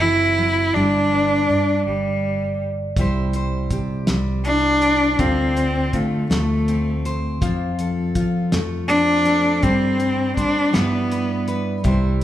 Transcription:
0.00 0.72 F#1 medium
0.00 0.37 E3 medium
0.00 0.76 C4 soft
0.00 0.75 E4 medium
0.00 0.71 F#4 soft
0.00 0.72 C5 medium
0.38 0.75 F#3 medium
0.74 1.46 G1 medium
0.74 2.97 G3 medium
0.74 1.85 D4 medium
0.74 1.49 D5 medium
1.14 1.48 B4 soft
1.49 1.85 G2 medium
1.49 2.93 B4 soft
1.49 2.93 D5 soft
1.86 2.94 G1 medium
1.86 2.66 G3 medium
2.97 3.68 C2 medium
2.97 5.15 C3 medium
2.97 4.08 G3 soft
2.97 4.45 E4 soft
2.97 3.71 G4 medium
2.97 kick medium
2.97 closed hi-hat medium
3.01 3.35 C5 medium
3.33 4.83 C5 medium
3.33 closed hi-hat soft
3.71 4.06 C3 medium
3.71 5.16 G4 soft
3.71 kick medium
3.71 closed hi-hat soft
4.07 5.16 C2 medium
4.07 5.20 G3 medium
4.07 snare medium
4.07 closed hi-hat medium
4.45 5.21 D4 loud
4.45 5.16 E4 soft
4.45 closed hi-hat soft
4.82 5.22 C5 medium
4.82 closed hi-hat soft
5.19 5.90 D2 medium
5.19 7.41 D3 medium
5.19 5.96 C4 medium
5.19 5.94 F4 medium
5.19 kick medium
5.19 closed hi-hat medium
5.57 7.05 C5 medium
5.57 closed hi-hat soft
5.93 6.29 D3 medium
5.93 6.30 A3 medium
5.93 7.42 F4 soft
5.93 kick medium
5.93 closed hi-hat soft
6.30 7.38 D2 medium
6.30 7.37 A3 medium
6.30 7.10 A3 medium
6.30 snare medium
6.30 closed hi-hat medium
6.68 8.89 C4 medium
6.68 closed hi-hat soft
7.05 7.80 C5 medium
7.05 closed hi-hat soft
7.41 8.12 F2 medium
7.41 9.59 F3 medium
7.41 8.14 F4 medium
7.41 kick medium
7.41 closed hi-hat medium
7.79 9.25 A4 medium
7.79 closed hi-hat soft
8.15 8.51 F3 medium
8.15 9.59 F4 soft
8.15 kick medium
8.15 closed hi-hat medium
8.52 9.60 F2 medium
8.52 9.59 A3 medium
8.52 snare medium
8.52 closed hi-hat medium
8.88 10.73 C4 medium
8.88 9.64 D4 loud
8.88 closed hi-hat soft
9.25 9.64 A4 medium
9.25 closed hi-hat soft
9.63 10.34 G2 medium
9.63 10.72 G3 medium
9.63 10.36 C4 medium
9.63 9.99 C5 medium
9.63 kick medium
9.63 closed hi-hat medium
10.00 10.36 C5 medium
10.00 closed hi-hat soft
10.37 10.73 G3 medium
10.37 10.76 D4 medium
10.37 10.70 C5 medium
10.37 kick medium
10.37 closed hi-hat soft
10.73 11.82 G2 medium
10.73 11.84 G3 medium
10.73 11.58 B3 medium
10.73 11.81 D4 medium
10.73 11.84 E4 medium
10.73 11.11 B4 medium
10.73 snare medium
10.73 closed hi-hat medium
11.12 11.47 B4 soft
11.12 closed hi-hat soft
11.48 11.81 B4 medium
11.48 closed hi-hat soft
11.84 12.24 C2 medium
11.84 12.24 C3 medium
11.84 12.24 G3 medium
11.84 12.24 E4 medium
11.84 12.24 G4 medium
11.84 12.22 C5 medium
11.84 kick medium
11.84 closed hi-hat medium

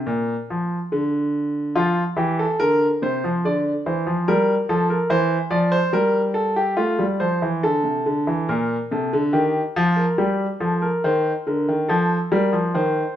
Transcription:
0.07 0.33 A#2 medium
0.50 0.76 F3 medium
0.92 1.73 D3 medium
1.75 2.02 F3 medium
1.75 2.02 F4 medium
2.17 2.43 E3 medium
2.17 2.38 G4 medium
2.39 2.59 A4 medium
2.60 2.86 D3 medium
2.60 2.86 A#4 loud
3.02 3.23 C3 medium
3.02 3.29 C5 medium
3.24 3.44 F3 medium
3.45 3.71 D3 medium
3.45 3.71 D5 medium
3.86 4.06 E3 medium
3.86 4.12 C5 medium
4.07 4.27 F3 medium
4.28 4.54 G3 medium
4.28 4.54 A#4 medium
4.69 4.95 F3 medium
4.69 4.90 A4 medium
4.90 5.10 A#4 medium
5.10 5.36 E3 medium
5.10 5.36 C5 medium
5.50 5.77 F3 medium
5.50 5.72 D5 medium
5.72 5.93 C5 medium
5.93 6.76 G3 medium
5.93 6.20 A#4 medium
6.34 6.56 A4 medium
6.56 6.78 G4 medium
6.77 6.99 A3 medium
6.77 7.04 F4 medium
6.99 7.20 G3 medium
7.20 7.41 F3 medium
7.20 7.47 C5 medium
7.42 7.63 E3 medium
7.63 7.84 D3 medium
7.63 8.46 A4 medium
7.84 8.05 C3 medium
8.06 8.27 D3 medium
8.27 8.48 E3 medium
8.49 8.75 A#2 medium
8.49 8.75 A#4 medium
8.91 9.12 C3 medium
8.91 9.18 A4 medium
9.13 9.34 D3 medium
9.33 9.60 D#3 medium
9.33 9.60 G4 medium
9.76 10.03 F3 medium
9.76 9.97 F4 medium
9.97 10.18 A#4 medium
10.18 10.45 G3 medium
10.18 10.45 G4 medium
10.60 10.87 F3 medium
10.60 10.82 A4 medium
10.82 11.03 A#4 medium
11.04 11.31 D#3 medium
11.04 11.31 C5 medium
11.47 11.67 D3 medium
11.47 11.73 A#4 medium
11.69 11.89 D#3 medium
11.89 12.16 F3 medium
11.89 12.15 A4 medium
12.32 12.52 G3 medium
12.32 12.58 A#4 medium
12.53 12.74 F3 medium
12.74 13.01 D#3 medium
12.74 13.16 C5 medium

